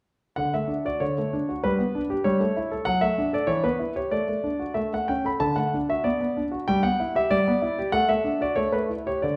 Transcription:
0.36 D3 F#5
0.54 A3 E5
0.67 D4
0.85 F#4 D5
1.00 D3 C#5
1.18 A3
1.33 D4
1.49 F#4
1.64 G3 B4
1.79 B3
1.95 D4
2.10 G4
2.24 G3 C#5
2.40 A3
2.57 E4
2.72 A4
2.85 F#3 F#5
3.01 A3 E5
3.18 D4
3.33 A4 D5
3.47 E3 C#5
3.64 B3 B4
3.79 E4
3.96 G4 C#5
4.11 A3 D5
4.28 A3
4.44 D4
4.59 F#4
4.74 A3 E5
4.93 A3 F#5
5.08 C#4 G5
5.25 A4 B5
5.40 D3 A5
5.56 A3 F#5
5.74 D4
5.89 F#4 E5
6.04 B3 D5
6.21 B3
6.37 D4
6.52 F#4
6.68 G3 G5
6.83 B3 F#5
7.00 E4
7.15 G4 E5
7.31 G3 D5
7.48 B3
7.62 E4
7.79 G4
7.92 A3 F#5
8.09 A3 E5
8.24 D4
8.41 F#4 D5
8.56 A3 C#5
8.72 A3 B4
8.89 E4
9.07 G4 C#5
9.22 D3 D5

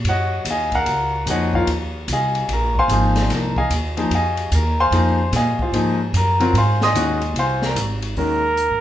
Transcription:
0.04 F#2, ride
0.09 F#4 C#5 D#5 F#5
0.45 D#2, hi-hat pedal, ride
0.50 G#4 D#5 F5 G#5
0.72 A#4 F5 F#5 A#5, kick, ride
0.86 C#2, ride
1.26 F2 F3 A#3 D#4 G#4 F#5, hi-hat pedal, ride
1.30 F#4 C#5 D#5
1.53 F4 A#4 C#5 F5, kick
1.67 D#2, ride
2.08 C2, hi-hat pedal, ride
2.13 G#4 D#5 F5 G#5
2.35 ride
2.48 A#1, ride
2.53 A#4 A#5
2.75 C5 G#5 C6, kick
2.79 F5
2.88 G#1 F3 A#3 D#4 G#4, hi-hat pedal, ride
3.16 snare, ride
3.29 C2, snare, ride
3.34 A#4 A#5
3.56 G#4 D#5 F5 G#5, kick
3.70 D#2, hi-hat pedal, ride
3.97 F3 A#3 D#4 G#4, ride
4.10 F2, ride
4.15 G#4 D#5 F5 G#5
4.37 ride
4.51 D#2 A#4 A#5, hi-hat pedal, ride
4.80 C5 F5 G#5 C6
4.91 F2 F3 A#3 D#4 G#4, ride
5.32 A#2 G#4 F5 G#5, snare, hi-hat pedal, ride
5.36 D#5
5.59 F4 G#4 C5 F5, muted upright bass stroke, kick
5.72 G#2 F3 A#3 D#4 G#4, ride
6.13 F#2 A#5, hi-hat pedal, ride
6.17 A#4
6.40 F#3 C4 F4 A#4, ride
6.53 G#2, ride
6.58 C5 F5 G#5 C6
6.81 D#5 G#5 C6 D#6, snare
6.94 D#2 D#3 G#3 C#4 F#4, hi-hat pedal, ride
7.22 ride
7.34 C2, ride
7.39 C5 F5 G#5 C6
7.62 snare
7.66 A#4 A#5
7.75 G#1, hi-hat pedal, ride
8.02 ride
8.16 D#2 D#3 G#3 C#4 F#4 A#4, open hi-hat
8.57 closed hi-hat
8.71 G#2

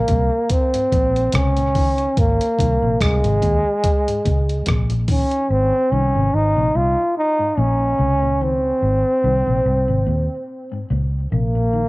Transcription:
Already playing: A#3
0.08 C2 A#2, kick, closed hi-hat
0.50 C4, kick, closed hi-hat
0.74 G#2, closed hi-hat
0.92 A#1 A#2, kick, closed hi-hat
1.16 closed hi-hat
1.32 C#2 C3 C#4, kick, cross-stick, closed hi-hat
1.57 A#2, closed hi-hat
1.75 D#3, kick, open hi-hat
1.98 closed hi-hat
2.17 G#1 A#3, kick, closed hi-hat
2.41 closed hi-hat
2.59 C2 D#3, kick, closed hi-hat
2.82 A#1 C3
3.00 C2 G#2 G#3, kick, cross-stick, closed hi-hat
3.23 G#1 C3, closed hi-hat
3.42 D#2 A#2, kick, closed hi-hat
3.84 kick, closed hi-hat
4.08 G#2, closed hi-hat
4.25 C#2 A#2, kick, closed hi-hat
4.49 closed hi-hat
4.66 A#1 C3, kick, cross-stick, closed hi-hat
4.90 A#2, closed hi-hat
5.08 D#3 C#4, kick, open hi-hat
5.31 closed hi-hat
5.50 G#1 C4
5.92 C2 D#3 C#4
6.15 G#1 C3
6.33 G#1 G#2 D#4
6.56 A#1 C3
6.74 C2 A#2 F4
7.18 D#4
7.39 G#2
7.57 A#1 A#2 C#4
7.98 C#2 C3
8.22 A#2
8.41 D#3 C4
8.82 G#1
9.24 C2 D#3
9.47 A#1 C3
9.65 C2 G#2
9.88 G#1 C3
10.07 D#2 A#2
10.72 G#2
10.90 C#2 A#2
11.32 A#1 C3 A#3
11.55 A#2
11.73 D#3

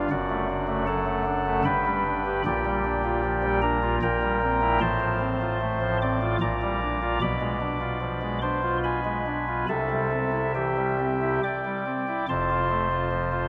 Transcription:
0.11 F#1 F#2 F#4 D5 F#5
0.30 A3
0.50 D4
0.68 A3
0.87 F#3 A4 F#5 A5
1.06 A3
1.26 D4
1.46 A3
1.65 G1 G2 B4 G5 B5
1.86 G3
2.05 D4
2.26 G4
2.46 A#1 A#2 G4 D5 G5
2.65 G3
2.85 D4
3.04 F4
3.24 F3
3.43 G3
3.62 D4 A#4 A#5
3.83 F4
4.02 A#1 A#2 A#4 G5 A#5
4.22 G3
4.42 C4
4.61 E4
4.81 A1 A2 C5 A5 C6
5.00 F3
5.20 C4
5.41 F4
5.61 A3
5.81 F3
6.02 C4 D5 D6
6.21 F4
6.41 A#1 A#2 D5 A#5 D6
6.62 G3
6.82 D4
7.02 F4
7.21 B1 B2 D5 B5 D6
7.41 G#3
7.61 D4
7.80 F4
8.01 F3
8.22 G#3
8.42 D4 C5 C6
8.63 F4
8.84 B4 G#5 B5
9.05 G#3
9.26 D4
9.47 F4
9.68 C2 C3 A4 E5 A5
9.90 G3
10.11 C4
10.32 E4
10.55 E3 G4 E5 G5
10.77 G3
10.99 C4
11.21 E4
11.43 D5 G5 D6
11.65 G3
11.86 C4
12.08 E4
12.28 F1 F2 C5 A5 C6
12.50 F4
12.70 A3
12.91 F4
13.11 F3
13.32 F4

